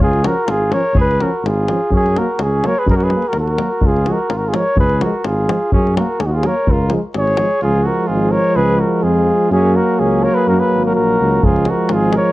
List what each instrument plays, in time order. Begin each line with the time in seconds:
0.00 tuba C#2, trumpet F4, flugelhorn G#4
0.13 davul high
0.24 euphonium F3, trombone C#4, trumpet F#4, flugelhorn A#4, davul high
0.46 tuba G#1, trumpet F4, davul high
0.51 flugelhorn G#4
0.72 euphonium F3, trombone C#4, trumpet A#4, flugelhorn C#5, davul high
0.94 tuba C#2, trumpet G#4, davul low
1.00 flugelhorn B4
1.11 davul high
1.21 euphonium F3, trombone C#4, trumpet F#4, flugelhorn A#4, davul high
1.43 tuba G#1, trumpet F4, flugelhorn G#4, davul high
1.68 euphonium F3, trombone C#4, davul high
1.90 tuba F#2, trumpet C#4, davul low
1.95 flugelhorn G#4
2.06 davul high
2.16 euphonium F#3, trombone A#3, trumpet F#4, flugelhorn A#4, davul high
2.39 tuba C#2, flugelhorn G#4, davul high
2.44 trumpet C#4
2.64 euphonium F#3, trombone A#3, trumpet A#4, flugelhorn C#5, davul high
2.78 trumpet G#4, flugelhorn B4
2.86 tuba F#2, trumpet G#4, flugelhorn B4, davul low
2.90 flugelhorn A#4
2.96 trumpet F#4, flugelhorn A#4
3.00 trumpet G#4, flugelhorn B4, davul high
3.10 euphonium F#3, davul high
3.14 trombone A#3
3.22 davul high
3.28 trumpet F#4, flugelhorn A#4
3.33 tuba D#2, trumpet F#4, davul high
3.40 flugelhorn A#4
3.48 davul high
3.58 euphonium F#3, trombone A#3, davul high
3.81 tuba C#2, davul low
3.86 trumpet F4, flugelhorn G#4
3.96 davul high
4.06 euphonium F3, trombone G#3, trumpet F#4, davul high
4.13 flugelhorn A#4
4.29 tuba G#1, trumpet F4, davul high
4.36 trumpet F#4, flugelhorn A#4
4.45 trumpet F4, flugelhorn G#4
4.53 euphonium F3, trombone G#3, trumpet A#4, flugelhorn C#5, davul high
4.76 tuba C#2, trumpet G#4, flugelhorn B4, davul low
4.90 davul high
5.00 euphonium F3, trumpet F#4, flugelhorn A#4, davul high
5.04 trombone G#3
5.24 tuba G#1, trumpet F4, flugelhorn G#4, davul high
5.47 euphonium F3, trombone G#3, davul high
5.72 tuba F#2, trumpet C#4, flugelhorn G#4, davul low
5.87 davul high
5.95 euphonium F#3, trombone A#3, trumpet F#4, flugelhorn A#4, davul high
6.20 tuba D#2, trumpet C#4, flugelhorn G#4, davul high
6.26 trumpet D#4, flugelhorn F#4
6.31 trumpet F4
6.36 flugelhorn G#4
6.43 euphonium F#3, trombone A#3, trumpet A#4, flugelhorn C#5, davul high
6.67 tuba C#2, flugelhorn A#4, davul low
6.71 trumpet F4
6.90 euphonium F3, trombone G#3, davul high
7.14 tuba G#1, trumpet G#4, flugelhorn C#5, davul high
7.28 davul high
7.37 euphonium F3, trombone G#3, davul high
7.62 tuba C#2, euphonium F3, trombone G#3, trumpet F4, flugelhorn G#4
7.84 trumpet F#4, flugelhorn A#4
8.07 tuba G#1, trumpet F4, flugelhorn G#4
8.30 trumpet A#4, flugelhorn C#5
8.56 tuba C#2, trumpet G#4, flugelhorn B4
8.79 trumpet F#4, flugelhorn A#4
9.03 tuba F2, trumpet F4, flugelhorn G#4
9.50 tuba F#2, euphonium F#3, trombone A#3, trumpet C#4, flugelhorn G#4
9.76 trumpet F#4, flugelhorn A#4
9.99 tuba C#2, trumpet C#4, flugelhorn G#4
10.23 trumpet A#4, flugelhorn C#5
10.34 trumpet G#4, flugelhorn B4
10.47 tuba F#2, trumpet F#4, flugelhorn A#4
10.59 trumpet G#4, flugelhorn B4
10.72 tuba G#1
10.84 trumpet F#4, flugelhorn A#4
10.95 tuba A#1, trumpet F#4, flugelhorn A#4
11.20 tuba C#2
11.42 tuba C#2, euphonium F3, trombone G#3, trumpet F4, flugelhorn G#4, davul low
11.56 davul high
11.65 trumpet F#4, davul high
11.71 flugelhorn A#4
11.89 tuba G#1, trumpet F4, davul high
11.93 flugelhorn G#4
12.13 trumpet A#4, davul high
12.18 flugelhorn C#5